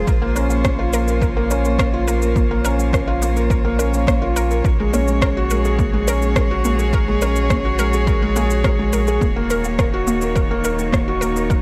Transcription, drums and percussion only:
0.07 kick, shaker
0.36 shaker
0.50 shaker
0.65 kick, cross-stick, shaker
0.93 shaker
1.08 shaker
1.21 kick, shaker
1.51 shaker
1.65 shaker
1.79 kick, cross-stick, shaker
2.08 shaker
2.22 shaker
2.36 kick, shaker
2.65 shaker
2.79 shaker
2.93 kick, cross-stick, shaker
3.22 shaker
3.37 shaker
3.50 kick, shaker
3.79 shaker
3.94 shaker
4.07 kick, cross-stick, shaker
4.36 shaker
4.51 shaker
4.64 kick, shaker
4.94 shaker
5.08 shaker
5.22 kick, cross-stick, shaker
5.50 shaker
5.65 shaker
5.79 kick, shaker
6.08 shaker
6.22 shaker
6.36 kick, cross-stick, shaker
6.65 shaker
6.79 shaker
6.93 kick, shaker
7.21 shaker
7.36 shaker
7.50 kick, cross-stick, shaker
7.79 shaker
7.93 shaker
8.07 kick, shaker
8.36 shaker
8.50 shaker
8.64 kick, cross-stick, shaker
8.93 shaker
9.07 shaker
9.21 kick, shaker
9.50 shaker
9.64 shaker
9.79 kick, cross-stick, shaker
10.07 shaker
10.21 shaker
10.36 kick, shaker
10.64 shaker
10.79 shaker
10.93 kick, cross-stick, shaker
11.22 shaker
11.36 shaker
11.50 kick, shaker

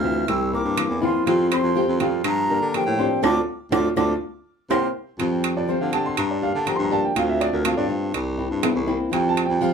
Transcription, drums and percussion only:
0.28 high timbale
0.78 high timbale, claves
1.27 high timbale
1.52 high timbale, claves
2.00 high timbale
2.24 high timbale, claves
2.74 high timbale
3.24 high timbale, claves
3.72 high timbale, claves
3.97 high timbale, claves
4.71 high timbale, claves
5.20 high timbale
5.44 high timbale
5.93 high timbale
6.17 high timbale
6.67 high timbale
7.16 high timbale
7.41 high timbale
7.65 high timbale
8.14 high timbale
8.63 high timbale, low timbale
9.13 high timbale
9.37 high timbale

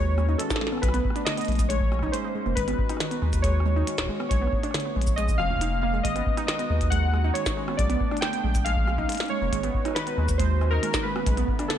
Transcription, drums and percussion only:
0.18 cross-stick
0.39 closed hi-hat
0.50 kick, snare, shaker
0.56 snare
0.61 snare
0.67 snare
0.72 cross-stick
0.78 cross-stick
0.83 kick, cross-stick, closed hi-hat
0.88 cross-stick
0.94 closed hi-hat
1.05 kick
1.10 cross-stick
1.16 closed hi-hat
1.27 snare, closed hi-hat
1.37 closed hi-hat
1.41 closed hi-hat
1.45 closed hi-hat
1.48 closed hi-hat
1.52 closed hi-hat
1.55 kick, closed hi-hat
1.59 closed hi-hat, shaker
1.70 closed hi-hat
1.81 kick
1.92 cross-stick
1.99 kick, cross-stick
2.06 cross-stick
2.14 closed hi-hat
2.57 kick, closed hi-hat
2.68 cross-stick, closed hi-hat
2.70 cross-stick
2.73 cross-stick
2.76 cross-stick
2.79 kick, cross-stick
2.81 cross-stick
2.84 cross-stick
2.87 cross-stick
2.89 cross-stick, closed hi-hat
2.97 cross-stick, snare, closed hi-hat
3.04 cross-stick
3.11 closed hi-hat
3.33 kick, closed hi-hat, shaker
3.44 kick, closed hi-hat
3.60 cross-stick
3.87 closed hi-hat
3.98 kick, snare, shaker
4.01 kick
4.04 kick
4.06 kick
4.20 cross-stick
4.31 kick, closed hi-hat
4.47 cross-stick
4.53 kick
4.63 cross-stick, closed hi-hat
4.71 cross-stick, snare, closed hi-hat
4.78 cross-stick, closed hi-hat
5.02 closed hi-hat
5.07 kick, shaker
5.18 closed hi-hat
5.29 kick, shaker
5.40 cross-stick
5.50 kick
5.53 kick
5.56 kick
5.59 kick, closed hi-hat
6.05 kick, closed hi-hat
6.16 cross-stick, closed hi-hat
6.27 kick
6.37 cross-stick, closed hi-hat
6.48 snare, closed hi-hat
6.59 closed hi-hat
6.81 kick, closed hi-hat
6.92 kick, closed hi-hat
7.14 cross-stick
7.35 closed hi-hat
7.46 kick, snare, shaker
7.68 cross-stick
7.79 kick, closed hi-hat
7.90 closed hi-hat
8.01 kick
8.11 cross-stick
8.17 closed hi-hat
8.22 snare, closed hi-hat
8.33 closed hi-hat
8.55 kick, closed hi-hat, shaker
8.66 closed hi-hat
8.77 kick
8.88 cross-stick
8.98 kick
9.09 closed hi-hat
9.12 closed hi-hat
9.15 closed hi-hat
9.20 snare, closed hi-hat
9.23 closed hi-hat
9.26 closed hi-hat
9.28 closed hi-hat
9.53 kick, closed hi-hat
9.63 cross-stick, closed hi-hat
9.74 kick
9.85 cross-stick, closed hi-hat
9.88 cross-stick
9.91 cross-stick
9.93 cross-stick
9.96 cross-stick, snare, closed hi-hat
9.99 cross-stick
10.02 cross-stick
10.04 cross-stick, closed hi-hat
10.29 kick, closed hi-hat, shaker
10.40 kick, closed hi-hat
10.61 cross-stick
10.83 closed hi-hat
10.94 kick, snare, shaker
11.16 cross-stick
11.27 kick, closed hi-hat
11.37 closed hi-hat
11.48 kick
11.59 cross-stick, closed hi-hat
11.70 snare, closed hi-hat

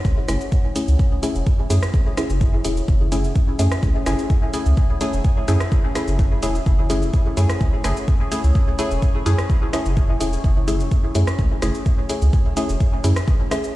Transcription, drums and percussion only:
0.05 kick, cabasa
0.28 cross-stick, closed hi-hat, cabasa
0.41 cabasa
0.52 kick, cabasa
0.76 closed hi-hat, cabasa
0.88 cabasa
0.99 kick, cabasa
1.23 closed hi-hat, cabasa
1.35 cabasa
1.47 kick, cabasa
1.70 closed hi-hat, cabasa
1.83 cross-stick, cabasa
1.94 kick, cabasa
2.17 cross-stick, closed hi-hat, cabasa
2.30 cabasa
2.41 kick, cabasa
2.65 closed hi-hat, cabasa
2.77 cabasa
2.88 kick, cabasa
3.12 closed hi-hat, cabasa
3.24 cabasa
3.35 kick, cabasa
3.59 closed hi-hat, cabasa
3.72 cross-stick, cabasa
3.83 kick, cabasa
4.06 cross-stick, closed hi-hat, cabasa
4.19 cabasa
4.30 kick, cabasa
4.54 closed hi-hat, cabasa
4.66 cabasa
4.77 kick, cabasa
5.01 closed hi-hat, cabasa
5.13 cabasa
5.24 kick, cabasa
5.48 closed hi-hat, cabasa
5.60 cross-stick, cabasa
5.72 kick, cabasa
5.95 cross-stick, closed hi-hat, cabasa
6.08 cabasa
6.19 kick, cabasa
6.43 closed hi-hat, cabasa
6.55 cabasa
6.66 kick, cabasa
6.90 closed hi-hat, cabasa
7.02 cabasa
7.13 kick, cabasa
7.37 closed hi-hat, cabasa
7.50 cross-stick, cabasa
7.61 kick, cabasa
7.84 cross-stick, closed hi-hat, cabasa
7.97 cabasa
8.08 kick, cabasa
8.32 closed hi-hat, cabasa
8.44 cabasa
8.55 kick, cabasa
8.79 closed hi-hat, cabasa
8.91 cabasa
9.02 kick, cabasa
9.26 closed hi-hat, cabasa
9.38 cross-stick, cabasa
9.50 kick, cabasa
9.73 cross-stick, closed hi-hat, cabasa
9.86 cabasa
9.97 kick, cabasa
10.21 closed hi-hat, cabasa
10.33 cabasa
10.44 kick, cabasa
10.68 closed hi-hat, cabasa
10.80 cabasa
10.91 kick, cabasa
11.15 closed hi-hat, cabasa
11.27 cross-stick, cabasa
11.39 kick, cabasa
11.62 cross-stick, closed hi-hat, cabasa
11.75 cabasa
11.86 kick, cabasa
12.09 closed hi-hat, cabasa
12.22 cabasa
12.33 kick, cabasa
12.57 closed hi-hat, cabasa
12.69 cabasa
12.80 kick, cabasa
13.04 closed hi-hat, cabasa
13.16 cross-stick, cabasa
13.28 kick, cabasa
13.51 cross-stick, closed hi-hat, cabasa
13.64 cabasa

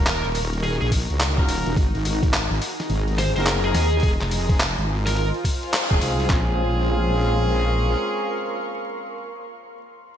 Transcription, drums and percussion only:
0.06 clap, open hi-hat
0.25 open hi-hat
0.35 open hi-hat
0.53 open hi-hat
0.64 open hi-hat
0.82 open hi-hat
0.92 kick, open hi-hat
1.10 open hi-hat
1.20 clap, open hi-hat
1.38 kick, open hi-hat
1.49 open hi-hat
1.66 open hi-hat
1.76 kick, open hi-hat
1.95 open hi-hat
2.05 open hi-hat
2.23 kick, open hi-hat
2.34 clap, open hi-hat
2.51 open hi-hat
2.62 open hi-hat
2.80 snare, open hi-hat
2.90 open hi-hat
3.08 open hi-hat
3.18 snare, open hi-hat
3.36 open hi-hat
3.46 clap, open hi-hat
3.64 open hi-hat
3.75 snare, open hi-hat
3.93 open hi-hat
4.00 kick, open hi-hat
4.03 open hi-hat
4.21 clap, open hi-hat
4.31 open hi-hat
4.49 kick, open hi-hat
4.60 clap, open hi-hat
4.78 open hi-hat
5.07 snare, open hi-hat
5.17 open hi-hat
5.34 open hi-hat
5.44 kick, open hi-hat
5.63 open hi-hat
5.74 clap, open hi-hat
5.91 kick, open hi-hat
6.01 open hi-hat
6.20 open hi-hat
6.29 kick, snare, clap

